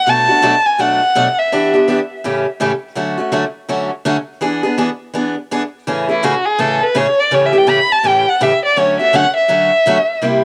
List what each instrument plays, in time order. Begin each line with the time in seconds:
Already playing: violin F#5
0.06 steel-string acoustic guitar B2 F#3 A3 D4 F#4, violin A5
0.29 steel-string acoustic guitar A3 D4 F#4
0.42 steel-string acoustic guitar B2 F#3 A3 D4 F#4
0.66 violin G#5
0.78 steel-string acoustic guitar B2 F#3 A3 D4 F#4, violin F#5
1.15 steel-string acoustic guitar B2 F#3 A3 D4 F#4
1.38 violin E5
1.52 steel-string acoustic guitar E3 B3 D4 G4
1.74 steel-string acoustic guitar B3 D4 G4
1.88 steel-string acoustic guitar E3 B3 D4 G4
2.24 steel-string acoustic guitar A2 C#3 E3 A3 C#4 G4
2.60 steel-string acoustic guitar A2 C#3 E3 A3 C#4 G4
2.95 steel-string acoustic guitar D3 F#3 A3 C#4 F#4
3.18 steel-string acoustic guitar A3 C#4 F#4
3.32 steel-string acoustic guitar D3 F#3 A3 C#4 F#4
3.68 steel-string acoustic guitar D3 F#3 A3 C#4 F#4
4.05 steel-string acoustic guitar D3 F#3 A3 C#4 F#4
4.41 steel-string acoustic guitar E3 B3 D4 G#4
4.63 steel-string acoustic guitar B3 D4 G#4
4.78 steel-string acoustic guitar E3 B3 D4 G#4
5.13 steel-string acoustic guitar E3 B3 D4 G#4
5.51 steel-string acoustic guitar E3 B3 D4 G#4
5.87 steel-string acoustic guitar A2 C#3 E3 A3 C#4 G#4
6.09 steel-string acoustic guitar E3 A3 C#4 G#4, violin E4
6.23 steel-string acoustic guitar A2 C#3 E3 A3 C#4 G#4, violin F#4
6.45 violin G#4
6.59 steel-string acoustic guitar A2 C#3 E3 A3 C#4 G#4, violin A4
6.83 violin B4
6.95 steel-string acoustic guitar A2 C#3 E3 A3 C#4 G#4, violin C#5
7.20 violin D5
7.31 steel-string acoustic guitar A2 C#3 E3 A3 C#4 G4, violin C#5
7.46 violin E5
7.53 steel-string acoustic guitar E3 A3 C#4 G4
7.58 violin G5
7.67 steel-string acoustic guitar A2 C#3 E3 A3 C#4 G4, violin B5
7.92 violin A5
8.03 steel-string acoustic guitar A2 C#3 E3 A3 C#4 G4
8.08 violin G5
8.29 violin F#5
8.41 steel-string acoustic guitar A2 C#3 E3 A3 C#4 G4, violin E5
8.65 violin D5
8.76 steel-string acoustic guitar D3 F#3 A3 C#4 F#4, violin C#5
8.99 steel-string acoustic guitar A3 C#4 F#4, violin E5
9.13 steel-string acoustic guitar D3 F#3 A3 C#4 F#4, violin F#5
9.37 violin E5
9.48 steel-string acoustic guitar D3 F#3 A3 C#4 F#4
9.86 steel-string acoustic guitar D3 F#3 A3 C#4 F#4
10.22 steel-string acoustic guitar C3 G3 A#3 E4 G4